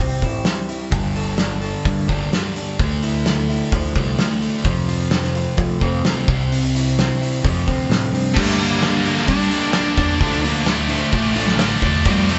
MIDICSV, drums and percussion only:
0, 0, Header, 1, 2, 480
1, 0, Start_track
1, 0, Tempo, 463679
1, 962, Time_signature, 4, 2, 24, 8
1, 12825, End_track
2, 0, Start_track
2, 0, Title_t, "Drums"
2, 230, Note_on_c, 9, 36, 68
2, 231, Note_on_c, 9, 46, 47
2, 334, Note_off_c, 9, 36, 0
2, 335, Note_off_c, 9, 46, 0
2, 464, Note_on_c, 9, 46, 63
2, 466, Note_on_c, 9, 38, 101
2, 567, Note_off_c, 9, 46, 0
2, 569, Note_off_c, 9, 38, 0
2, 714, Note_on_c, 9, 46, 46
2, 817, Note_off_c, 9, 46, 0
2, 949, Note_on_c, 9, 46, 62
2, 954, Note_on_c, 9, 36, 105
2, 1052, Note_off_c, 9, 46, 0
2, 1057, Note_off_c, 9, 36, 0
2, 1199, Note_on_c, 9, 46, 46
2, 1302, Note_off_c, 9, 46, 0
2, 1426, Note_on_c, 9, 46, 58
2, 1428, Note_on_c, 9, 38, 96
2, 1529, Note_off_c, 9, 46, 0
2, 1531, Note_off_c, 9, 38, 0
2, 1672, Note_on_c, 9, 46, 42
2, 1776, Note_off_c, 9, 46, 0
2, 1919, Note_on_c, 9, 36, 100
2, 1921, Note_on_c, 9, 46, 61
2, 2023, Note_off_c, 9, 36, 0
2, 2025, Note_off_c, 9, 46, 0
2, 2163, Note_on_c, 9, 46, 46
2, 2165, Note_on_c, 9, 36, 67
2, 2266, Note_off_c, 9, 46, 0
2, 2268, Note_off_c, 9, 36, 0
2, 2411, Note_on_c, 9, 46, 61
2, 2413, Note_on_c, 9, 38, 97
2, 2515, Note_off_c, 9, 46, 0
2, 2517, Note_off_c, 9, 38, 0
2, 2651, Note_on_c, 9, 46, 45
2, 2754, Note_off_c, 9, 46, 0
2, 2893, Note_on_c, 9, 36, 107
2, 2897, Note_on_c, 9, 46, 62
2, 2997, Note_off_c, 9, 36, 0
2, 3000, Note_off_c, 9, 46, 0
2, 3131, Note_on_c, 9, 46, 49
2, 3234, Note_off_c, 9, 46, 0
2, 3372, Note_on_c, 9, 46, 62
2, 3374, Note_on_c, 9, 38, 98
2, 3476, Note_off_c, 9, 46, 0
2, 3478, Note_off_c, 9, 38, 0
2, 3624, Note_on_c, 9, 46, 46
2, 3728, Note_off_c, 9, 46, 0
2, 3852, Note_on_c, 9, 46, 68
2, 3854, Note_on_c, 9, 36, 101
2, 3956, Note_off_c, 9, 46, 0
2, 3958, Note_off_c, 9, 36, 0
2, 4091, Note_on_c, 9, 46, 48
2, 4096, Note_on_c, 9, 36, 70
2, 4195, Note_off_c, 9, 46, 0
2, 4199, Note_off_c, 9, 36, 0
2, 4332, Note_on_c, 9, 46, 65
2, 4334, Note_on_c, 9, 38, 101
2, 4435, Note_off_c, 9, 46, 0
2, 4437, Note_off_c, 9, 38, 0
2, 4578, Note_on_c, 9, 46, 47
2, 4682, Note_off_c, 9, 46, 0
2, 4807, Note_on_c, 9, 46, 63
2, 4813, Note_on_c, 9, 36, 104
2, 4910, Note_off_c, 9, 46, 0
2, 4916, Note_off_c, 9, 36, 0
2, 5060, Note_on_c, 9, 46, 48
2, 5164, Note_off_c, 9, 46, 0
2, 5290, Note_on_c, 9, 46, 63
2, 5292, Note_on_c, 9, 38, 100
2, 5393, Note_off_c, 9, 46, 0
2, 5395, Note_off_c, 9, 38, 0
2, 5416, Note_on_c, 9, 38, 28
2, 5520, Note_off_c, 9, 38, 0
2, 5540, Note_on_c, 9, 46, 47
2, 5643, Note_off_c, 9, 46, 0
2, 5769, Note_on_c, 9, 46, 58
2, 5777, Note_on_c, 9, 36, 103
2, 5872, Note_off_c, 9, 46, 0
2, 5881, Note_off_c, 9, 36, 0
2, 6019, Note_on_c, 9, 36, 67
2, 6020, Note_on_c, 9, 46, 42
2, 6122, Note_off_c, 9, 36, 0
2, 6124, Note_off_c, 9, 46, 0
2, 6260, Note_on_c, 9, 46, 59
2, 6262, Note_on_c, 9, 38, 104
2, 6363, Note_off_c, 9, 46, 0
2, 6365, Note_off_c, 9, 38, 0
2, 6502, Note_on_c, 9, 36, 98
2, 6509, Note_on_c, 9, 46, 46
2, 6606, Note_off_c, 9, 36, 0
2, 6613, Note_off_c, 9, 46, 0
2, 6751, Note_on_c, 9, 46, 59
2, 6854, Note_off_c, 9, 46, 0
2, 6995, Note_on_c, 9, 46, 47
2, 7099, Note_off_c, 9, 46, 0
2, 7233, Note_on_c, 9, 46, 63
2, 7235, Note_on_c, 9, 38, 105
2, 7336, Note_off_c, 9, 46, 0
2, 7338, Note_off_c, 9, 38, 0
2, 7482, Note_on_c, 9, 46, 45
2, 7586, Note_off_c, 9, 46, 0
2, 7708, Note_on_c, 9, 36, 101
2, 7719, Note_on_c, 9, 46, 68
2, 7811, Note_off_c, 9, 36, 0
2, 7822, Note_off_c, 9, 46, 0
2, 7948, Note_on_c, 9, 36, 67
2, 7955, Note_on_c, 9, 46, 50
2, 8052, Note_off_c, 9, 36, 0
2, 8058, Note_off_c, 9, 46, 0
2, 8192, Note_on_c, 9, 46, 65
2, 8194, Note_on_c, 9, 38, 100
2, 8296, Note_off_c, 9, 46, 0
2, 8298, Note_off_c, 9, 38, 0
2, 8434, Note_on_c, 9, 46, 48
2, 8538, Note_off_c, 9, 46, 0
2, 8660, Note_on_c, 9, 36, 111
2, 8660, Note_on_c, 9, 49, 111
2, 8763, Note_off_c, 9, 36, 0
2, 8764, Note_off_c, 9, 49, 0
2, 8907, Note_on_c, 9, 46, 58
2, 9010, Note_off_c, 9, 46, 0
2, 9136, Note_on_c, 9, 46, 69
2, 9138, Note_on_c, 9, 38, 100
2, 9239, Note_off_c, 9, 46, 0
2, 9241, Note_off_c, 9, 38, 0
2, 9373, Note_on_c, 9, 46, 52
2, 9477, Note_off_c, 9, 46, 0
2, 9492, Note_on_c, 9, 38, 31
2, 9596, Note_off_c, 9, 38, 0
2, 9601, Note_on_c, 9, 46, 69
2, 9610, Note_on_c, 9, 36, 83
2, 9705, Note_off_c, 9, 46, 0
2, 9713, Note_off_c, 9, 36, 0
2, 9847, Note_on_c, 9, 46, 52
2, 9951, Note_off_c, 9, 46, 0
2, 10073, Note_on_c, 9, 46, 71
2, 10075, Note_on_c, 9, 38, 104
2, 10177, Note_off_c, 9, 46, 0
2, 10179, Note_off_c, 9, 38, 0
2, 10320, Note_on_c, 9, 46, 55
2, 10327, Note_on_c, 9, 36, 83
2, 10424, Note_off_c, 9, 46, 0
2, 10431, Note_off_c, 9, 36, 0
2, 10567, Note_on_c, 9, 36, 108
2, 10568, Note_on_c, 9, 46, 75
2, 10670, Note_off_c, 9, 36, 0
2, 10672, Note_off_c, 9, 46, 0
2, 10811, Note_on_c, 9, 46, 55
2, 10914, Note_off_c, 9, 46, 0
2, 11038, Note_on_c, 9, 46, 77
2, 11040, Note_on_c, 9, 38, 105
2, 11141, Note_off_c, 9, 46, 0
2, 11144, Note_off_c, 9, 38, 0
2, 11278, Note_on_c, 9, 46, 57
2, 11381, Note_off_c, 9, 46, 0
2, 11516, Note_on_c, 9, 46, 75
2, 11519, Note_on_c, 9, 36, 83
2, 11619, Note_off_c, 9, 46, 0
2, 11623, Note_off_c, 9, 36, 0
2, 11755, Note_on_c, 9, 46, 55
2, 11859, Note_off_c, 9, 46, 0
2, 11879, Note_on_c, 9, 38, 31
2, 11983, Note_off_c, 9, 38, 0
2, 11997, Note_on_c, 9, 46, 84
2, 11999, Note_on_c, 9, 38, 111
2, 12101, Note_off_c, 9, 46, 0
2, 12103, Note_off_c, 9, 38, 0
2, 12239, Note_on_c, 9, 36, 79
2, 12241, Note_on_c, 9, 46, 57
2, 12343, Note_off_c, 9, 36, 0
2, 12344, Note_off_c, 9, 46, 0
2, 12475, Note_on_c, 9, 46, 83
2, 12481, Note_on_c, 9, 36, 106
2, 12579, Note_off_c, 9, 46, 0
2, 12584, Note_off_c, 9, 36, 0
2, 12721, Note_on_c, 9, 46, 59
2, 12824, Note_off_c, 9, 46, 0
2, 12825, End_track
0, 0, End_of_file